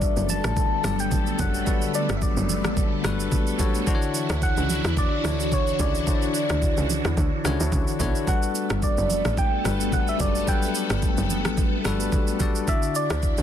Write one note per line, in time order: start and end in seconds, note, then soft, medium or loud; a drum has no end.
0.00 0.14 G1 loud
0.00 3.83 D3 medium
0.00 0.35 G3 medium
0.00 3.83 A3 medium
0.00 3.83 B3 medium
0.00 0.35 D4 medium
0.00 0.35 F#4 medium
0.00 0.36 A4 medium
0.00 3.83 A4 medium
0.00 0.36 B4 medium
0.00 0.31 D5 loud
0.00 kick loud
0.00 shaker medium
0.17 0.41 F#1 medium
0.17 shaker medium
0.29 1.02 A5 loud
0.29 high conga medium
0.29 shaker medium
0.44 0.69 A1 medium
0.44 cross-stick medium
0.44 high conga medium
0.44 shaker soft
0.57 kick loud
0.57 low conga medium
0.57 shaker medium
0.83 1.33 G1 medium
0.83 1.29 F#3 medium
0.83 1.29 G3 medium
0.83 1.29 D4 medium
0.83 1.30 A4 medium
0.83 1.30 D5 medium
0.83 cross-stick medium
0.83 high conga medium
0.83 shaker medium
0.99 1.39 G5 loud
0.99 shaker medium
1.12 kick loud
1.12 low conga medium
1.12 shaker medium
1.27 shaker soft
1.38 1.64 F#1 medium
1.38 1.61 G3 medium
1.38 1.62 D4 medium
1.38 1.62 F#4 medium
1.38 1.62 A4 medium
1.38 1.62 C#5 medium
1.38 1.91 F#5 loud
1.38 kick loud
1.38 high conga medium
1.38 low conga medium
1.38 shaker loud
1.54 shaker medium
1.65 2.55 G3 medium
1.65 2.55 D4 medium
1.65 2.55 F#4 medium
1.65 2.56 A4 medium
1.65 2.56 B4 medium
1.65 kick loud
1.65 shaker medium
1.82 shaker medium
1.94 2.14 D5 medium
1.94 shaker loud
2.09 2.34 G1 medium
2.09 cross-stick medium
2.09 shaker medium
2.17 2.24 E5 medium
2.22 3.32 D5 medium
2.22 kick medium
2.22 shaker medium
2.37 2.66 F#1 medium
2.37 shaker medium
2.49 high conga medium
2.49 shaker loud
2.65 2.89 A1 medium
2.65 cross-stick medium
2.65 high conga medium
2.65 shaker soft
2.77 kick loud
2.77 low conga medium
2.77 shaker medium
3.03 3.29 G1 medium
3.03 3.49 G3 medium
3.03 3.49 D4 medium
3.03 3.50 F#4 medium
3.03 3.50 A4 medium
3.03 3.50 B4 loud
3.03 cross-stick loud
3.03 high conga medium
3.03 shaker medium
3.20 shaker medium
3.32 kick loud
3.32 low conga medium
3.32 shaker medium
3.47 shaker soft
3.58 3.82 G3 medium
3.58 3.82 D4 medium
3.58 3.82 F#4 medium
3.58 3.82 A4 medium
3.58 3.83 C#5 medium
3.58 kick loud
3.58 high conga medium
3.58 low conga medium
3.58 shaker loud
3.75 shaker medium
3.86 4.75 D3 medium
3.86 8.23 E3 medium
3.86 4.75 D4 medium
3.86 8.23 D4 medium
3.86 8.23 E4 medium
3.86 4.76 E4 medium
3.86 8.23 F#4 medium
3.86 4.76 F#4 medium
3.86 3.95 C5 medium
3.86 kick loud
3.86 shaker medium
3.95 4.80 C#5 loud
4.02 shaker medium
4.15 shaker loud
4.30 4.54 D2 loud
4.30 cross-stick loud
4.30 shaker medium
4.42 4.94 F#5 loud
4.42 kick medium
4.42 shaker medium
4.57 4.82 C#2 medium
4.57 shaker soft
4.70 high conga medium
4.70 shaker loud
4.85 5.09 E2 medium
4.85 cross-stick medium
4.85 high conga medium
4.85 shaker soft
4.97 5.55 D5 loud
4.97 kick loud
4.97 low conga medium
4.97 shaker medium
5.23 5.74 D2 loud
5.23 5.69 D3 medium
5.23 5.69 D4 medium
5.23 5.70 E4 medium
5.23 5.70 F#4 medium
5.23 5.70 C#5 medium
5.23 cross-stick medium
5.23 high conga medium
5.23 shaker medium
5.40 shaker medium
5.52 5.80 C#5 medium
5.52 kick loud
5.52 low conga medium
5.52 shaker medium
5.67 shaker soft
5.79 6.04 C#2 medium
5.79 6.02 D3 medium
5.79 6.02 D4 medium
5.79 6.02 E4 medium
5.79 6.03 F#4 medium
5.79 6.03 C#5 medium
5.79 7.42 D5 loud
5.79 kick loud
5.79 high conga medium
5.79 low conga medium
5.79 shaker loud
5.95 shaker medium
6.06 6.95 D3 medium
6.06 6.96 D4 medium
6.06 6.96 E4 medium
6.06 6.96 F#4 medium
6.06 6.15 C5 medium
6.06 kick loud
6.06 shaker medium
6.15 7.00 D5 medium
6.22 shaker medium
6.35 shaker loud
6.50 6.75 D2 loud
6.50 cross-stick loud
6.50 shaker medium
6.62 kick medium
6.62 shaker medium
6.77 7.02 C#2 medium
6.77 shaker soft
6.90 high conga medium
6.90 shaker loud
7.05 7.16 E2 medium
7.05 cross-stick medium
7.05 high conga medium
7.05 shaker soft
7.17 7.31 D2 loud
7.17 kick loud
7.17 low conga medium
7.17 shaker medium
7.44 7.58 C#2 loud
7.44 7.89 D3 medium
7.44 7.90 D4 medium
7.44 7.90 E4 medium
7.44 7.90 F#4 medium
7.44 7.91 C#5 loud
7.44 cross-stick medium
7.44 high conga medium
7.44 shaker medium
7.60 7.71 D2 loud
7.60 shaker medium
7.72 7.86 C#2 loud
7.72 kick loud
7.72 low conga medium
7.72 shaker medium
7.88 shaker soft
7.99 8.14 B1 medium
7.99 8.22 D3 medium
7.99 8.22 D4 medium
7.99 8.23 E4 medium
7.99 8.23 F#4 medium
7.99 8.23 C#5 medium
7.99 kick loud
7.99 high conga medium
7.99 low conga medium
7.99 shaker loud
8.15 shaker medium
8.26 9.16 G3 medium
8.26 12.64 A3 medium
8.26 12.64 B3 medium
8.26 9.16 D4 medium
8.26 9.16 F#4 medium
8.26 12.64 A4 medium
8.26 9.16 A4 medium
8.26 9.17 B4 medium
8.26 8.79 F#5 loud
8.26 kick loud
8.26 shaker medium
8.43 shaker medium
8.55 shaker loud
8.70 8.95 G1 loud
8.70 cross-stick loud
8.70 shaker medium
8.82 9.34 D5 loud
8.82 kick medium
8.82 shaker medium
8.97 9.22 F#1 medium
8.97 shaker soft
9.10 high conga medium
9.10 shaker medium
9.25 9.50 A1 medium
9.25 cross-stick medium
9.25 high conga medium
9.25 shaker soft
9.38 9.95 G5 loud
9.38 kick loud
9.38 low conga medium
9.38 shaker medium
9.64 10.14 G1 medium
9.64 10.10 G3 medium
9.64 10.10 D4 medium
9.64 10.10 F#4 medium
9.64 10.10 A4 medium
9.64 10.11 B4 medium
9.64 cross-stick medium
9.64 high conga medium
9.64 shaker medium
9.80 shaker medium
9.92 10.08 F#5 loud
9.92 kick loud
9.92 low conga medium
9.92 shaker medium
10.08 10.20 E5 medium
10.08 shaker soft
10.19 10.45 F#1 medium
10.19 10.42 G3 medium
10.19 10.42 D4 medium
10.19 10.43 F#4 medium
10.19 10.43 A4 medium
10.19 10.43 D5 medium
10.19 10.50 D5 medium
10.19 kick loud
10.19 high conga medium
10.19 low conga medium
10.19 shaker loud
10.35 shaker medium
10.47 11.36 F#3 medium
10.47 11.36 G3 medium
10.47 11.36 D4 medium
10.47 11.37 A4 medium
10.47 11.37 B4 medium
10.47 11.58 G5 loud
10.47 kick loud
10.47 shaker medium
10.62 shaker medium
10.75 shaker loud
10.90 11.15 G1 medium
10.90 cross-stick medium
10.90 shaker medium
11.02 kick medium
11.02 shaker medium
11.17 11.47 F#1 medium
11.17 shaker medium
11.30 high conga medium
11.30 shaker loud
11.45 11.70 A1 medium
11.45 cross-stick medium
11.45 high conga medium
11.45 shaker soft
11.58 kick loud
11.58 low conga medium
11.58 shaker medium
11.84 12.10 G1 medium
11.84 12.30 G3 medium
11.84 12.30 D4 medium
11.84 12.30 F#4 medium
11.84 12.31 A4 medium
11.84 12.31 B4 loud
11.84 cross-stick medium
11.84 high conga medium
11.84 shaker medium
12.00 shaker medium
12.12 kick loud
12.12 low conga medium
12.12 shaker medium
12.27 shaker medium
12.39 12.62 G3 medium
12.39 12.63 D4 medium
12.39 12.63 F#4 medium
12.39 12.63 A4 medium
12.39 12.63 D5 medium
12.39 kick loud
12.39 high conga medium
12.39 low conga medium
12.39 shaker loud
12.55 shaker medium
12.67 13.43 D3 medium
12.67 13.43 D4 medium
12.67 13.43 E4 medium
12.67 13.43 F#4 medium
12.67 13.43 D5 medium
12.67 12.98 E5 loud
12.67 kick loud
12.67 shaker medium
12.82 shaker medium
12.95 13.43 D5 loud
12.95 shaker loud
13.10 13.35 D2 loud
13.10 cross-stick medium
13.10 shaker medium
13.23 kick medium
13.23 shaker medium
13.38 13.43 C#2 medium
13.38 shaker medium